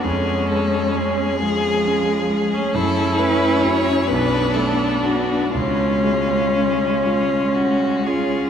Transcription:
<<
  \new Staff \with { instrumentName = "Violin" } { \time 6/8 \key cis \phrygian \tempo 4. = 44 gis'8 a'8 gis'2 | a'8 b'8 cis''8 b'8 a'8 fis'8 | eis'4. eis'8 fis'8 gis'8 | }
  \new Staff \with { instrumentName = "Viola" } { \time 6/8 \key cis \phrygian cis'4. gis4~ gis16 cis'16 | e'4. d'4. | cis'2~ cis'8 eis'8 | }
  \new Staff \with { instrumentName = "Grand piano" } { \time 6/8 \key cis \phrygian eis,8 gis8 cis'8 gis'8 cis'8 gis8 | fis,8 a8 <cis' fis'>8 b,,8 a8 <d' fis'>8 | cis,8 gis8 cis'8 eis'8 cis'8 gis8 | }
  \new Staff \with { instrumentName = "Cello" } { \time 6/8 \key cis \phrygian gis4. eis4~ eis16 a16 | cis'4. b4. | gis2~ gis8 cis'8 | }
>>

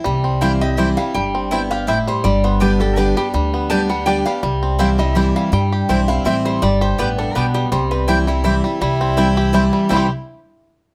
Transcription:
<<
  \new Staff \with { instrumentName = "Resonator guitar played with a steel bar" } { \time 3/4 \key c \major \tempo 4 = 164 r4 f''8 ees''8 e''8 f''8 | g''4. f''8 e''8 c''8 | d''8 c''8 b'8 a'8 b'8 g'8 | r4 a''8 fis''8 g''8 f''8 |
r4 f''8 ees''8 e''8 f''8 | g''4. f''8 e''8 c''8 | d''8 c''8 b'8 a'8 b'8 g'8 | c''8 b'8 g'8 e'4 r8 |
r2. | e'8 r2 r8 | }
  \new Staff \with { instrumentName = "Mandolin" } { \time 3/4 \key c \major r4 <c' e' c'' g''>16 r8. <c' e' c'' g''>16 r8. | r4 <c' e' c'' g''>16 r8. <c' e' c'' g''>16 r8. | r4 <b g' d'' g''>16 r8. <b g' d'' g''>16 r8. | r4 <b g' d'' g''>16 r8. <b g' d'' g''>16 r8. |
r4 <c' e' c'' g''>16 r8. <c' e' c'' g''>16 r8. | r4 <c' e' c'' g''>16 r8. <c' e' c'' g''>16 r8. | r4 <b g' d'' g''>16 r8. <b g' d'' g''>16 r8. | r4 <c' e' c'' g''>16 r8. <c' e' c'' g''>16 r8. |
r4 <c' e' c'' g''>16 r8. <c' e' c'' g''>16 r8. | <c' e' c'' g''>8 r2 r8 | }
  \new Staff \with { instrumentName = "Fiddle" } { \time 3/4 \key c \major r2. | r2. | r2. | r2. |
r2. | r2. | r2. | r2. |
e'2. | e'8 r2 r8 | }
  \new Staff \with { instrumentName = "Five-string banjo" } { \time 3/4 \key c \major g8 c'8 e'8 g'8 e'8 g8 | g8 c'8 e'8 g'8 e'8 g8 | g8 b8 d'8 g'8 d'8 g8 | g8 b8 d'8 g8 d'8 g8 |
g8 c'8 e'8 g8 e'8 g8 | g8 g'8 c'8 e'8 c'8 g8 | g8 g'8 b8 d'8 b8 g8 | g8 c'8 e'8 g8 e'8 g8 |
g8 c'8 e'8 g'8 e'8 g8 | <g c' e' g'>8 r2 r8 | }
  \new Staff \with { instrumentName = "Steel-string acoustic guitar" } { \time 3/4 \key c \major << { r4 <e g c' e'>8 <c' e'>8 <e g c' e'>8 <c' e'>8 | r2. | r4 <d g b g'>8 <b g'>8 <d g b g'>8 <b g'>8 | r4 <d g b g'>8 <b g'>8 <d g b g'>8 <b g'>8 |
r4 <e g c' e'>8 <c' e'>8 <e g c' e'>4 | r4 <e g c' e'>8 <c' e'>8 <e g c' e'>4 | r2. | r4 <e g c' e'>8 <c' e'>8 <e g c' e'>8 <c' e'>8 |
r4 <e g c' e'>4 <e g c' e'>4 | <c e g c' e'>8 r2 r8 | } \\ { c2 r4 | g,4 b4 a,4 | g,2 r4 | d2 r4 |
c2 r4 | g,2 r4 | g,4 a,4 b,4 | c2 r4 |
c2 r4 | r2. | } >> }
  \new Staff \with { instrumentName = "Upright bass" } { \clef bass \time 3/4 \key c \major c,2. | g,,2. | g,,2. | d,2. |
c,2. | g,4 b,,4 a,,4 | g,,4 a,,4 b,,4 | c,2. |
c,2. | c,8 r2 r8 | }
>>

